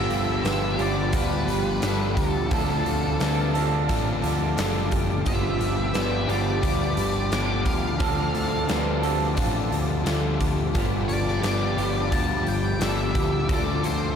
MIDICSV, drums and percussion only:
0, 0, Header, 1, 2, 480
1, 0, Start_track
1, 0, Tempo, 686499
1, 1758, Time_signature, 4, 2, 24, 8
1, 9899, End_track
2, 0, Start_track
2, 0, Title_t, "Drums"
2, 73, Note_on_c, 9, 46, 46
2, 142, Note_off_c, 9, 46, 0
2, 315, Note_on_c, 9, 46, 59
2, 321, Note_on_c, 9, 38, 91
2, 385, Note_off_c, 9, 46, 0
2, 391, Note_off_c, 9, 38, 0
2, 552, Note_on_c, 9, 46, 48
2, 622, Note_off_c, 9, 46, 0
2, 788, Note_on_c, 9, 46, 67
2, 791, Note_on_c, 9, 36, 81
2, 858, Note_off_c, 9, 46, 0
2, 861, Note_off_c, 9, 36, 0
2, 1037, Note_on_c, 9, 46, 48
2, 1044, Note_on_c, 9, 38, 28
2, 1107, Note_off_c, 9, 46, 0
2, 1113, Note_off_c, 9, 38, 0
2, 1273, Note_on_c, 9, 46, 66
2, 1279, Note_on_c, 9, 38, 105
2, 1343, Note_off_c, 9, 46, 0
2, 1349, Note_off_c, 9, 38, 0
2, 1517, Note_on_c, 9, 36, 84
2, 1518, Note_on_c, 9, 46, 55
2, 1587, Note_off_c, 9, 36, 0
2, 1588, Note_off_c, 9, 46, 0
2, 1755, Note_on_c, 9, 46, 75
2, 1758, Note_on_c, 9, 36, 103
2, 1825, Note_off_c, 9, 46, 0
2, 1828, Note_off_c, 9, 36, 0
2, 2000, Note_on_c, 9, 46, 48
2, 2070, Note_off_c, 9, 46, 0
2, 2239, Note_on_c, 9, 46, 63
2, 2246, Note_on_c, 9, 38, 87
2, 2309, Note_off_c, 9, 46, 0
2, 2316, Note_off_c, 9, 38, 0
2, 2482, Note_on_c, 9, 46, 54
2, 2552, Note_off_c, 9, 46, 0
2, 2721, Note_on_c, 9, 46, 78
2, 2722, Note_on_c, 9, 36, 84
2, 2791, Note_off_c, 9, 46, 0
2, 2792, Note_off_c, 9, 36, 0
2, 2962, Note_on_c, 9, 46, 48
2, 2969, Note_on_c, 9, 38, 28
2, 3032, Note_off_c, 9, 46, 0
2, 3038, Note_off_c, 9, 38, 0
2, 3201, Note_on_c, 9, 46, 67
2, 3208, Note_on_c, 9, 38, 103
2, 3271, Note_off_c, 9, 46, 0
2, 3277, Note_off_c, 9, 38, 0
2, 3438, Note_on_c, 9, 46, 56
2, 3441, Note_on_c, 9, 36, 80
2, 3508, Note_off_c, 9, 46, 0
2, 3511, Note_off_c, 9, 36, 0
2, 3677, Note_on_c, 9, 46, 67
2, 3681, Note_on_c, 9, 36, 102
2, 3747, Note_off_c, 9, 46, 0
2, 3751, Note_off_c, 9, 36, 0
2, 3920, Note_on_c, 9, 46, 47
2, 3990, Note_off_c, 9, 46, 0
2, 4156, Note_on_c, 9, 46, 56
2, 4163, Note_on_c, 9, 38, 92
2, 4226, Note_off_c, 9, 46, 0
2, 4233, Note_off_c, 9, 38, 0
2, 4402, Note_on_c, 9, 46, 50
2, 4472, Note_off_c, 9, 46, 0
2, 4638, Note_on_c, 9, 36, 85
2, 4638, Note_on_c, 9, 46, 68
2, 4708, Note_off_c, 9, 36, 0
2, 4708, Note_off_c, 9, 46, 0
2, 4874, Note_on_c, 9, 46, 50
2, 4943, Note_off_c, 9, 46, 0
2, 5117, Note_on_c, 9, 46, 64
2, 5124, Note_on_c, 9, 38, 108
2, 5187, Note_off_c, 9, 46, 0
2, 5194, Note_off_c, 9, 38, 0
2, 5352, Note_on_c, 9, 46, 54
2, 5356, Note_on_c, 9, 36, 87
2, 5422, Note_off_c, 9, 46, 0
2, 5426, Note_off_c, 9, 36, 0
2, 5592, Note_on_c, 9, 46, 70
2, 5596, Note_on_c, 9, 36, 108
2, 5662, Note_off_c, 9, 46, 0
2, 5666, Note_off_c, 9, 36, 0
2, 5836, Note_on_c, 9, 46, 50
2, 5906, Note_off_c, 9, 46, 0
2, 6074, Note_on_c, 9, 46, 63
2, 6080, Note_on_c, 9, 38, 90
2, 6144, Note_off_c, 9, 46, 0
2, 6150, Note_off_c, 9, 38, 0
2, 6316, Note_on_c, 9, 46, 53
2, 6386, Note_off_c, 9, 46, 0
2, 6551, Note_on_c, 9, 46, 74
2, 6555, Note_on_c, 9, 36, 80
2, 6621, Note_off_c, 9, 46, 0
2, 6625, Note_off_c, 9, 36, 0
2, 6798, Note_on_c, 9, 46, 48
2, 6868, Note_off_c, 9, 46, 0
2, 7034, Note_on_c, 9, 46, 75
2, 7040, Note_on_c, 9, 38, 101
2, 7104, Note_off_c, 9, 46, 0
2, 7110, Note_off_c, 9, 38, 0
2, 7275, Note_on_c, 9, 46, 53
2, 7276, Note_on_c, 9, 36, 78
2, 7345, Note_off_c, 9, 46, 0
2, 7346, Note_off_c, 9, 36, 0
2, 7515, Note_on_c, 9, 46, 68
2, 7517, Note_on_c, 9, 36, 99
2, 7585, Note_off_c, 9, 46, 0
2, 7587, Note_off_c, 9, 36, 0
2, 7756, Note_on_c, 9, 46, 46
2, 7825, Note_off_c, 9, 46, 0
2, 7885, Note_on_c, 9, 38, 27
2, 7955, Note_off_c, 9, 38, 0
2, 7995, Note_on_c, 9, 46, 62
2, 8001, Note_on_c, 9, 38, 88
2, 8065, Note_off_c, 9, 46, 0
2, 8071, Note_off_c, 9, 38, 0
2, 8238, Note_on_c, 9, 46, 53
2, 8308, Note_off_c, 9, 46, 0
2, 8475, Note_on_c, 9, 36, 80
2, 8475, Note_on_c, 9, 46, 65
2, 8544, Note_off_c, 9, 46, 0
2, 8545, Note_off_c, 9, 36, 0
2, 8716, Note_on_c, 9, 46, 43
2, 8786, Note_off_c, 9, 46, 0
2, 8956, Note_on_c, 9, 46, 68
2, 8962, Note_on_c, 9, 38, 108
2, 9026, Note_off_c, 9, 46, 0
2, 9032, Note_off_c, 9, 38, 0
2, 9195, Note_on_c, 9, 36, 85
2, 9195, Note_on_c, 9, 46, 50
2, 9265, Note_off_c, 9, 36, 0
2, 9265, Note_off_c, 9, 46, 0
2, 9434, Note_on_c, 9, 36, 100
2, 9435, Note_on_c, 9, 46, 68
2, 9504, Note_off_c, 9, 36, 0
2, 9505, Note_off_c, 9, 46, 0
2, 9677, Note_on_c, 9, 46, 48
2, 9747, Note_off_c, 9, 46, 0
2, 9899, End_track
0, 0, End_of_file